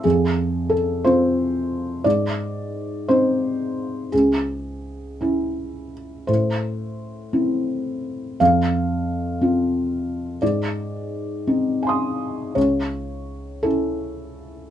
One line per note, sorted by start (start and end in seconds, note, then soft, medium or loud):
0.04 2.01 F2 soft
0.04 0.71 G#4 medium
0.70 1.04 A4 medium
1.04 2.01 C4 soft
1.04 2.01 F4 soft
1.04 2.05 C5 medium
2.04 4.08 G#2 soft
2.04 3.08 D5 medium
3.08 4.09 C4 soft
3.08 4.09 D#4 soft
3.08 4.12 C5 medium
4.12 6.25 C#2 soft
4.12 5.93 G#4 soft
5.21 6.24 C#4 soft
5.21 6.25 E4 soft
6.27 8.36 A2 soft
6.27 8.40 C5 soft
7.33 8.36 C4 soft
7.33 8.36 E4 soft
8.40 10.38 F2 soft
8.40 10.41 F5 medium
9.41 10.37 C4 soft
9.41 10.38 F4 soft
10.42 12.52 G#2 soft
10.42 12.56 D5 medium
11.47 12.52 C4 soft
11.47 12.52 D#4 soft
11.83 12.52 G#5 soft
11.87 12.54 C6 soft
11.87 12.55 D#6 soft
12.55 14.70 C#2 soft
12.55 13.64 C#5 soft
13.63 14.70 C#4 soft
13.63 14.70 E4 soft
13.63 14.70 A4 soft